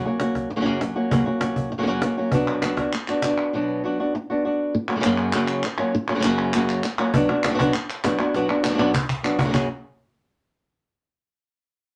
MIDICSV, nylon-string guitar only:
0, 0, Header, 1, 3, 480
1, 0, Start_track
1, 0, Tempo, 301054
1, 1776, Time_signature, 4, 2, 24, 8
1, 19067, End_track
2, 0, Start_track
2, 0, Title_t, "Nylon-string guitar"
2, 0, Program_c, 0, 24
2, 86, Note_on_c, 0, 66, 58
2, 105, Note_on_c, 0, 61, 55
2, 106, Note_on_c, 0, 58, 54
2, 116, Note_on_c, 0, 54, 47
2, 305, Note_off_c, 0, 66, 0
2, 312, Note_off_c, 0, 61, 0
2, 320, Note_off_c, 0, 58, 0
2, 324, Note_on_c, 0, 66, 60
2, 331, Note_on_c, 0, 61, 55
2, 333, Note_off_c, 0, 54, 0
2, 339, Note_on_c, 0, 58, 54
2, 350, Note_on_c, 0, 54, 45
2, 788, Note_off_c, 0, 54, 0
2, 788, Note_off_c, 0, 58, 0
2, 791, Note_off_c, 0, 61, 0
2, 793, Note_off_c, 0, 66, 0
2, 895, Note_on_c, 0, 49, 69
2, 899, Note_on_c, 0, 54, 64
2, 902, Note_on_c, 0, 58, 74
2, 907, Note_on_c, 0, 61, 71
2, 909, Note_on_c, 0, 66, 68
2, 945, Note_off_c, 0, 49, 0
2, 949, Note_off_c, 0, 54, 0
2, 958, Note_off_c, 0, 58, 0
2, 964, Note_on_c, 0, 49, 77
2, 966, Note_off_c, 0, 61, 0
2, 968, Note_on_c, 0, 54, 75
2, 969, Note_off_c, 0, 66, 0
2, 977, Note_on_c, 0, 58, 70
2, 985, Note_on_c, 0, 61, 91
2, 988, Note_on_c, 0, 66, 90
2, 1023, Note_off_c, 0, 49, 0
2, 1023, Note_off_c, 0, 54, 0
2, 1029, Note_off_c, 0, 58, 0
2, 1030, Note_on_c, 0, 42, 89
2, 1034, Note_off_c, 0, 61, 0
2, 1037, Note_off_c, 0, 66, 0
2, 1042, Note_on_c, 0, 49, 99
2, 1042, Note_on_c, 0, 54, 86
2, 1048, Note_on_c, 0, 58, 87
2, 1053, Note_on_c, 0, 61, 83
2, 1056, Note_on_c, 0, 66, 88
2, 1266, Note_off_c, 0, 54, 0
2, 1273, Note_off_c, 0, 42, 0
2, 1279, Note_off_c, 0, 49, 0
2, 1282, Note_off_c, 0, 58, 0
2, 1284, Note_off_c, 0, 61, 0
2, 1285, Note_on_c, 0, 54, 61
2, 1286, Note_off_c, 0, 66, 0
2, 1298, Note_on_c, 0, 58, 60
2, 1305, Note_on_c, 0, 61, 66
2, 1516, Note_off_c, 0, 61, 0
2, 1521, Note_off_c, 0, 54, 0
2, 1526, Note_on_c, 0, 66, 58
2, 1527, Note_off_c, 0, 58, 0
2, 1535, Note_on_c, 0, 61, 55
2, 1545, Note_on_c, 0, 58, 54
2, 1553, Note_on_c, 0, 54, 45
2, 1761, Note_off_c, 0, 54, 0
2, 1761, Note_off_c, 0, 66, 0
2, 1766, Note_off_c, 0, 61, 0
2, 1771, Note_off_c, 0, 58, 0
2, 1773, Note_on_c, 0, 42, 77
2, 1776, Note_on_c, 0, 49, 83
2, 1780, Note_on_c, 0, 54, 88
2, 1791, Note_on_c, 0, 58, 93
2, 1791, Note_on_c, 0, 61, 88
2, 1795, Note_on_c, 0, 66, 93
2, 1983, Note_off_c, 0, 66, 0
2, 1995, Note_off_c, 0, 61, 0
2, 2000, Note_off_c, 0, 58, 0
2, 2002, Note_on_c, 0, 66, 62
2, 2006, Note_off_c, 0, 42, 0
2, 2008, Note_off_c, 0, 49, 0
2, 2009, Note_off_c, 0, 54, 0
2, 2015, Note_on_c, 0, 61, 54
2, 2019, Note_on_c, 0, 58, 53
2, 2028, Note_on_c, 0, 54, 53
2, 2226, Note_off_c, 0, 66, 0
2, 2244, Note_off_c, 0, 61, 0
2, 2245, Note_on_c, 0, 66, 63
2, 2250, Note_off_c, 0, 58, 0
2, 2254, Note_off_c, 0, 54, 0
2, 2263, Note_on_c, 0, 61, 55
2, 2268, Note_on_c, 0, 58, 53
2, 2273, Note_on_c, 0, 54, 51
2, 2719, Note_off_c, 0, 54, 0
2, 2721, Note_off_c, 0, 61, 0
2, 2724, Note_off_c, 0, 66, 0
2, 2725, Note_off_c, 0, 58, 0
2, 2837, Note_on_c, 0, 54, 69
2, 2839, Note_on_c, 0, 49, 70
2, 2846, Note_on_c, 0, 58, 69
2, 2851, Note_on_c, 0, 61, 73
2, 2855, Note_on_c, 0, 66, 70
2, 2882, Note_off_c, 0, 49, 0
2, 2897, Note_off_c, 0, 54, 0
2, 2898, Note_off_c, 0, 58, 0
2, 2901, Note_on_c, 0, 49, 76
2, 2903, Note_off_c, 0, 61, 0
2, 2909, Note_off_c, 0, 66, 0
2, 2916, Note_on_c, 0, 54, 79
2, 2917, Note_on_c, 0, 58, 84
2, 2922, Note_on_c, 0, 61, 85
2, 2928, Note_on_c, 0, 66, 82
2, 2961, Note_off_c, 0, 49, 0
2, 2969, Note_off_c, 0, 54, 0
2, 2974, Note_off_c, 0, 66, 0
2, 2978, Note_off_c, 0, 58, 0
2, 2978, Note_off_c, 0, 61, 0
2, 2980, Note_on_c, 0, 42, 90
2, 2980, Note_on_c, 0, 49, 89
2, 2988, Note_on_c, 0, 54, 90
2, 2993, Note_on_c, 0, 66, 105
2, 2997, Note_on_c, 0, 58, 85
2, 2998, Note_on_c, 0, 61, 96
2, 3212, Note_off_c, 0, 42, 0
2, 3212, Note_off_c, 0, 49, 0
2, 3216, Note_off_c, 0, 54, 0
2, 3219, Note_off_c, 0, 66, 0
2, 3221, Note_off_c, 0, 58, 0
2, 3221, Note_off_c, 0, 61, 0
2, 3234, Note_on_c, 0, 54, 59
2, 3244, Note_on_c, 0, 58, 68
2, 3255, Note_on_c, 0, 61, 67
2, 3267, Note_on_c, 0, 66, 77
2, 3447, Note_off_c, 0, 66, 0
2, 3456, Note_off_c, 0, 61, 0
2, 3459, Note_off_c, 0, 54, 0
2, 3464, Note_off_c, 0, 58, 0
2, 3466, Note_on_c, 0, 66, 61
2, 3476, Note_on_c, 0, 61, 55
2, 3487, Note_on_c, 0, 58, 53
2, 3493, Note_on_c, 0, 54, 50
2, 3696, Note_off_c, 0, 66, 0
2, 3698, Note_off_c, 0, 54, 0
2, 3701, Note_off_c, 0, 61, 0
2, 3706, Note_off_c, 0, 58, 0
2, 3709, Note_on_c, 0, 47, 83
2, 3717, Note_on_c, 0, 54, 84
2, 3726, Note_on_c, 0, 59, 94
2, 3727, Note_on_c, 0, 62, 86
2, 3734, Note_on_c, 0, 66, 97
2, 4173, Note_off_c, 0, 54, 0
2, 4179, Note_off_c, 0, 47, 0
2, 4187, Note_off_c, 0, 59, 0
2, 4188, Note_off_c, 0, 62, 0
2, 4192, Note_off_c, 0, 66, 0
2, 4192, Note_on_c, 0, 54, 63
2, 4208, Note_on_c, 0, 59, 63
2, 4220, Note_on_c, 0, 62, 72
2, 4221, Note_on_c, 0, 66, 66
2, 4418, Note_off_c, 0, 66, 0
2, 4420, Note_off_c, 0, 54, 0
2, 4429, Note_off_c, 0, 59, 0
2, 4430, Note_off_c, 0, 62, 0
2, 4437, Note_on_c, 0, 66, 55
2, 4449, Note_on_c, 0, 62, 52
2, 4462, Note_on_c, 0, 59, 47
2, 4664, Note_off_c, 0, 66, 0
2, 4669, Note_off_c, 0, 59, 0
2, 4669, Note_off_c, 0, 62, 0
2, 4922, Note_on_c, 0, 66, 58
2, 4942, Note_on_c, 0, 62, 57
2, 4959, Note_on_c, 0, 59, 44
2, 5147, Note_off_c, 0, 66, 0
2, 5157, Note_off_c, 0, 62, 0
2, 5165, Note_off_c, 0, 59, 0
2, 5169, Note_on_c, 0, 66, 56
2, 5181, Note_on_c, 0, 62, 57
2, 5192, Note_on_c, 0, 59, 48
2, 5631, Note_off_c, 0, 59, 0
2, 5632, Note_off_c, 0, 66, 0
2, 5632, Note_on_c, 0, 47, 71
2, 5638, Note_off_c, 0, 62, 0
2, 5642, Note_on_c, 0, 54, 87
2, 5650, Note_on_c, 0, 59, 86
2, 5662, Note_on_c, 0, 62, 80
2, 5664, Note_on_c, 0, 66, 88
2, 6099, Note_off_c, 0, 54, 0
2, 6104, Note_off_c, 0, 47, 0
2, 6107, Note_off_c, 0, 59, 0
2, 6119, Note_off_c, 0, 62, 0
2, 6119, Note_on_c, 0, 54, 62
2, 6120, Note_off_c, 0, 66, 0
2, 6126, Note_on_c, 0, 59, 58
2, 6136, Note_on_c, 0, 62, 59
2, 6144, Note_on_c, 0, 66, 69
2, 6347, Note_off_c, 0, 54, 0
2, 6351, Note_off_c, 0, 59, 0
2, 6356, Note_off_c, 0, 62, 0
2, 6357, Note_off_c, 0, 66, 0
2, 6376, Note_on_c, 0, 66, 58
2, 6382, Note_on_c, 0, 62, 54
2, 6399, Note_on_c, 0, 59, 45
2, 6596, Note_off_c, 0, 66, 0
2, 6599, Note_off_c, 0, 62, 0
2, 6601, Note_off_c, 0, 59, 0
2, 6855, Note_on_c, 0, 66, 57
2, 6877, Note_on_c, 0, 62, 50
2, 6881, Note_on_c, 0, 59, 53
2, 7076, Note_off_c, 0, 66, 0
2, 7087, Note_off_c, 0, 62, 0
2, 7089, Note_off_c, 0, 59, 0
2, 7093, Note_on_c, 0, 66, 62
2, 7111, Note_on_c, 0, 62, 53
2, 7119, Note_on_c, 0, 59, 43
2, 7556, Note_off_c, 0, 66, 0
2, 7564, Note_off_c, 0, 62, 0
2, 7569, Note_off_c, 0, 59, 0
2, 7790, Note_on_c, 0, 66, 54
2, 7801, Note_on_c, 0, 61, 60
2, 7809, Note_on_c, 0, 58, 57
2, 7811, Note_on_c, 0, 54, 51
2, 7886, Note_off_c, 0, 54, 0
2, 7897, Note_off_c, 0, 58, 0
2, 7903, Note_on_c, 0, 49, 58
2, 7904, Note_off_c, 0, 61, 0
2, 7905, Note_off_c, 0, 66, 0
2, 7905, Note_on_c, 0, 54, 64
2, 7917, Note_on_c, 0, 58, 67
2, 7923, Note_on_c, 0, 61, 64
2, 7924, Note_on_c, 0, 66, 65
2, 7955, Note_off_c, 0, 49, 0
2, 7961, Note_off_c, 0, 54, 0
2, 7965, Note_off_c, 0, 58, 0
2, 7970, Note_off_c, 0, 61, 0
2, 7970, Note_off_c, 0, 66, 0
2, 7975, Note_on_c, 0, 49, 83
2, 7980, Note_on_c, 0, 54, 79
2, 7984, Note_on_c, 0, 58, 90
2, 7989, Note_on_c, 0, 61, 93
2, 7990, Note_on_c, 0, 66, 89
2, 8029, Note_off_c, 0, 49, 0
2, 8035, Note_off_c, 0, 54, 0
2, 8035, Note_off_c, 0, 58, 0
2, 8043, Note_off_c, 0, 61, 0
2, 8045, Note_on_c, 0, 42, 96
2, 8048, Note_on_c, 0, 49, 97
2, 8049, Note_off_c, 0, 66, 0
2, 8054, Note_on_c, 0, 54, 94
2, 8054, Note_on_c, 0, 58, 106
2, 8062, Note_on_c, 0, 61, 96
2, 8068, Note_on_c, 0, 66, 105
2, 8497, Note_off_c, 0, 42, 0
2, 8500, Note_off_c, 0, 49, 0
2, 8510, Note_off_c, 0, 54, 0
2, 8516, Note_off_c, 0, 58, 0
2, 8516, Note_off_c, 0, 61, 0
2, 8516, Note_on_c, 0, 42, 96
2, 8518, Note_off_c, 0, 66, 0
2, 8519, Note_on_c, 0, 49, 92
2, 8529, Note_on_c, 0, 54, 98
2, 8534, Note_on_c, 0, 58, 91
2, 8535, Note_on_c, 0, 61, 108
2, 8537, Note_on_c, 0, 66, 99
2, 8987, Note_off_c, 0, 42, 0
2, 8989, Note_off_c, 0, 49, 0
2, 8994, Note_off_c, 0, 54, 0
2, 8996, Note_off_c, 0, 58, 0
2, 8996, Note_off_c, 0, 61, 0
2, 8998, Note_off_c, 0, 66, 0
2, 9219, Note_on_c, 0, 66, 57
2, 9234, Note_on_c, 0, 61, 59
2, 9243, Note_on_c, 0, 58, 56
2, 9252, Note_on_c, 0, 54, 55
2, 9458, Note_off_c, 0, 66, 0
2, 9466, Note_off_c, 0, 61, 0
2, 9470, Note_off_c, 0, 58, 0
2, 9475, Note_off_c, 0, 54, 0
2, 9709, Note_on_c, 0, 66, 62
2, 9720, Note_on_c, 0, 61, 64
2, 9723, Note_on_c, 0, 58, 60
2, 9732, Note_on_c, 0, 49, 72
2, 9737, Note_on_c, 0, 54, 50
2, 9741, Note_off_c, 0, 66, 0
2, 9752, Note_off_c, 0, 61, 0
2, 9755, Note_off_c, 0, 58, 0
2, 9769, Note_off_c, 0, 54, 0
2, 9784, Note_off_c, 0, 49, 0
2, 9803, Note_on_c, 0, 49, 73
2, 9811, Note_on_c, 0, 54, 75
2, 9818, Note_on_c, 0, 58, 80
2, 9823, Note_on_c, 0, 66, 82
2, 9826, Note_on_c, 0, 61, 76
2, 9855, Note_off_c, 0, 49, 0
2, 9868, Note_off_c, 0, 54, 0
2, 9870, Note_off_c, 0, 61, 0
2, 9871, Note_off_c, 0, 58, 0
2, 9874, Note_on_c, 0, 49, 82
2, 9880, Note_off_c, 0, 66, 0
2, 9887, Note_on_c, 0, 54, 93
2, 9890, Note_on_c, 0, 58, 89
2, 9890, Note_on_c, 0, 61, 99
2, 9899, Note_on_c, 0, 66, 98
2, 9938, Note_off_c, 0, 49, 0
2, 9939, Note_off_c, 0, 54, 0
2, 9940, Note_off_c, 0, 58, 0
2, 9947, Note_off_c, 0, 61, 0
2, 9949, Note_off_c, 0, 66, 0
2, 9953, Note_on_c, 0, 42, 106
2, 9957, Note_on_c, 0, 49, 100
2, 9958, Note_on_c, 0, 54, 97
2, 9959, Note_on_c, 0, 58, 111
2, 9966, Note_on_c, 0, 61, 99
2, 9968, Note_on_c, 0, 66, 110
2, 10417, Note_off_c, 0, 42, 0
2, 10418, Note_off_c, 0, 49, 0
2, 10427, Note_off_c, 0, 54, 0
2, 10428, Note_off_c, 0, 58, 0
2, 10431, Note_off_c, 0, 61, 0
2, 10432, Note_off_c, 0, 66, 0
2, 10436, Note_on_c, 0, 42, 100
2, 10437, Note_on_c, 0, 49, 90
2, 10444, Note_on_c, 0, 54, 94
2, 10448, Note_on_c, 0, 58, 99
2, 10457, Note_on_c, 0, 66, 92
2, 10458, Note_on_c, 0, 61, 94
2, 10894, Note_off_c, 0, 42, 0
2, 10897, Note_off_c, 0, 58, 0
2, 10899, Note_off_c, 0, 49, 0
2, 10899, Note_off_c, 0, 66, 0
2, 10905, Note_off_c, 0, 54, 0
2, 10907, Note_off_c, 0, 61, 0
2, 11149, Note_on_c, 0, 66, 71
2, 11158, Note_on_c, 0, 61, 67
2, 11164, Note_on_c, 0, 58, 54
2, 11172, Note_on_c, 0, 54, 59
2, 11368, Note_off_c, 0, 54, 0
2, 11380, Note_on_c, 0, 47, 93
2, 11382, Note_off_c, 0, 66, 0
2, 11386, Note_off_c, 0, 61, 0
2, 11387, Note_off_c, 0, 58, 0
2, 11387, Note_on_c, 0, 54, 93
2, 11393, Note_on_c, 0, 59, 88
2, 11402, Note_on_c, 0, 62, 97
2, 11407, Note_on_c, 0, 66, 85
2, 11609, Note_off_c, 0, 66, 0
2, 11617, Note_off_c, 0, 47, 0
2, 11621, Note_off_c, 0, 54, 0
2, 11624, Note_off_c, 0, 59, 0
2, 11628, Note_off_c, 0, 62, 0
2, 11628, Note_on_c, 0, 66, 68
2, 11649, Note_on_c, 0, 62, 60
2, 11657, Note_on_c, 0, 59, 53
2, 11849, Note_off_c, 0, 66, 0
2, 11862, Note_off_c, 0, 62, 0
2, 11868, Note_on_c, 0, 66, 63
2, 11871, Note_off_c, 0, 59, 0
2, 11881, Note_on_c, 0, 62, 61
2, 11890, Note_on_c, 0, 59, 57
2, 11940, Note_off_c, 0, 59, 0
2, 11951, Note_off_c, 0, 62, 0
2, 11955, Note_off_c, 0, 66, 0
2, 11955, Note_on_c, 0, 54, 67
2, 11959, Note_on_c, 0, 59, 71
2, 11970, Note_on_c, 0, 62, 69
2, 11975, Note_on_c, 0, 66, 69
2, 12007, Note_off_c, 0, 54, 0
2, 12010, Note_off_c, 0, 59, 0
2, 12021, Note_off_c, 0, 62, 0
2, 12022, Note_off_c, 0, 66, 0
2, 12026, Note_on_c, 0, 54, 90
2, 12029, Note_on_c, 0, 59, 89
2, 12040, Note_on_c, 0, 62, 88
2, 12041, Note_on_c, 0, 66, 85
2, 12083, Note_off_c, 0, 54, 0
2, 12090, Note_off_c, 0, 62, 0
2, 12092, Note_off_c, 0, 59, 0
2, 12094, Note_off_c, 0, 66, 0
2, 12095, Note_on_c, 0, 47, 103
2, 12102, Note_on_c, 0, 54, 103
2, 12109, Note_on_c, 0, 62, 115
2, 12111, Note_on_c, 0, 59, 104
2, 12113, Note_on_c, 0, 66, 113
2, 12334, Note_off_c, 0, 47, 0
2, 12337, Note_off_c, 0, 54, 0
2, 12340, Note_off_c, 0, 62, 0
2, 12342, Note_off_c, 0, 59, 0
2, 12343, Note_off_c, 0, 66, 0
2, 12829, Note_on_c, 0, 54, 64
2, 12830, Note_on_c, 0, 59, 72
2, 12844, Note_on_c, 0, 62, 62
2, 12852, Note_on_c, 0, 66, 77
2, 13040, Note_off_c, 0, 66, 0
2, 13047, Note_off_c, 0, 62, 0
2, 13059, Note_on_c, 0, 66, 68
2, 13060, Note_off_c, 0, 54, 0
2, 13060, Note_off_c, 0, 59, 0
2, 13066, Note_on_c, 0, 62, 54
2, 13077, Note_on_c, 0, 59, 54
2, 13294, Note_off_c, 0, 66, 0
2, 13298, Note_off_c, 0, 62, 0
2, 13299, Note_off_c, 0, 59, 0
2, 13302, Note_on_c, 0, 47, 81
2, 13310, Note_on_c, 0, 54, 88
2, 13318, Note_on_c, 0, 59, 85
2, 13327, Note_on_c, 0, 62, 93
2, 13331, Note_on_c, 0, 66, 102
2, 13513, Note_off_c, 0, 66, 0
2, 13526, Note_off_c, 0, 62, 0
2, 13532, Note_off_c, 0, 59, 0
2, 13532, Note_on_c, 0, 66, 60
2, 13535, Note_off_c, 0, 47, 0
2, 13539, Note_off_c, 0, 54, 0
2, 13545, Note_on_c, 0, 62, 54
2, 13551, Note_on_c, 0, 59, 50
2, 13739, Note_off_c, 0, 66, 0
2, 13753, Note_off_c, 0, 62, 0
2, 13758, Note_on_c, 0, 66, 61
2, 13767, Note_off_c, 0, 59, 0
2, 13772, Note_on_c, 0, 62, 57
2, 13786, Note_on_c, 0, 59, 56
2, 13841, Note_off_c, 0, 59, 0
2, 13850, Note_off_c, 0, 62, 0
2, 13851, Note_on_c, 0, 54, 60
2, 13857, Note_off_c, 0, 66, 0
2, 13860, Note_on_c, 0, 59, 63
2, 13870, Note_on_c, 0, 62, 65
2, 13876, Note_on_c, 0, 66, 63
2, 13910, Note_off_c, 0, 54, 0
2, 13916, Note_off_c, 0, 59, 0
2, 13925, Note_off_c, 0, 62, 0
2, 13929, Note_on_c, 0, 54, 73
2, 13930, Note_off_c, 0, 66, 0
2, 13935, Note_on_c, 0, 59, 72
2, 13944, Note_on_c, 0, 62, 81
2, 13949, Note_on_c, 0, 66, 82
2, 13983, Note_off_c, 0, 59, 0
2, 13986, Note_off_c, 0, 54, 0
2, 13995, Note_off_c, 0, 66, 0
2, 13997, Note_off_c, 0, 62, 0
2, 14002, Note_on_c, 0, 47, 93
2, 14002, Note_on_c, 0, 59, 98
2, 14005, Note_on_c, 0, 54, 98
2, 14014, Note_on_c, 0, 66, 106
2, 14017, Note_on_c, 0, 62, 106
2, 14226, Note_off_c, 0, 47, 0
2, 14228, Note_off_c, 0, 54, 0
2, 14229, Note_off_c, 0, 62, 0
2, 14232, Note_off_c, 0, 59, 0
2, 14239, Note_off_c, 0, 66, 0
2, 14718, Note_on_c, 0, 54, 61
2, 14725, Note_on_c, 0, 59, 67
2, 14734, Note_on_c, 0, 62, 69
2, 14745, Note_on_c, 0, 66, 69
2, 14947, Note_off_c, 0, 66, 0
2, 14961, Note_off_c, 0, 54, 0
2, 14964, Note_off_c, 0, 59, 0
2, 14966, Note_on_c, 0, 66, 65
2, 14969, Note_off_c, 0, 62, 0
2, 14985, Note_on_c, 0, 62, 51
2, 14996, Note_on_c, 0, 59, 54
2, 15053, Note_off_c, 0, 66, 0
2, 15055, Note_on_c, 0, 49, 56
2, 15060, Note_off_c, 0, 59, 0
2, 15061, Note_on_c, 0, 54, 58
2, 15064, Note_off_c, 0, 62, 0
2, 15067, Note_on_c, 0, 58, 54
2, 15070, Note_on_c, 0, 61, 65
2, 15072, Note_on_c, 0, 66, 68
2, 15108, Note_off_c, 0, 49, 0
2, 15115, Note_off_c, 0, 54, 0
2, 15119, Note_off_c, 0, 58, 0
2, 15123, Note_off_c, 0, 61, 0
2, 15127, Note_off_c, 0, 66, 0
2, 15127, Note_on_c, 0, 49, 71
2, 15134, Note_on_c, 0, 54, 69
2, 15138, Note_on_c, 0, 58, 73
2, 15142, Note_on_c, 0, 61, 82
2, 15146, Note_on_c, 0, 66, 82
2, 15183, Note_off_c, 0, 49, 0
2, 15192, Note_off_c, 0, 54, 0
2, 15194, Note_off_c, 0, 58, 0
2, 15196, Note_off_c, 0, 61, 0
2, 15197, Note_off_c, 0, 66, 0
2, 15199, Note_on_c, 0, 42, 80
2, 15202, Note_on_c, 0, 49, 88
2, 15211, Note_on_c, 0, 54, 89
2, 15213, Note_on_c, 0, 58, 93
2, 15215, Note_on_c, 0, 61, 104
2, 15216, Note_on_c, 0, 66, 96
2, 15402, Note_off_c, 0, 42, 0
2, 15404, Note_off_c, 0, 49, 0
2, 15408, Note_off_c, 0, 54, 0
2, 15409, Note_off_c, 0, 58, 0
2, 15410, Note_off_c, 0, 61, 0
2, 15411, Note_off_c, 0, 66, 0
2, 19067, End_track
3, 0, Start_track
3, 0, Title_t, "Muted nylon-string guitar strokes"
3, 802, Note_on_c, 9, 29, 77
3, 961, Note_off_c, 9, 29, 0
3, 2737, Note_on_c, 9, 29, 80
3, 2897, Note_off_c, 9, 29, 0
3, 4682, Note_on_c, 9, 29, 73
3, 4842, Note_off_c, 9, 29, 0
3, 6614, Note_on_c, 9, 29, 71
3, 6774, Note_off_c, 9, 29, 0
3, 7568, Note_on_c, 9, 29, 77
3, 7728, Note_off_c, 9, 29, 0
3, 9007, Note_on_c, 9, 29, 85
3, 9167, Note_off_c, 9, 29, 0
3, 9481, Note_on_c, 9, 29, 78
3, 9641, Note_off_c, 9, 29, 0
3, 10913, Note_on_c, 9, 29, 78
3, 11072, Note_off_c, 9, 29, 0
3, 12350, Note_on_c, 9, 29, 80
3, 12509, Note_off_c, 9, 29, 0
3, 14245, Note_on_c, 9, 29, 69
3, 14404, Note_off_c, 9, 29, 0
3, 19067, End_track
0, 0, End_of_file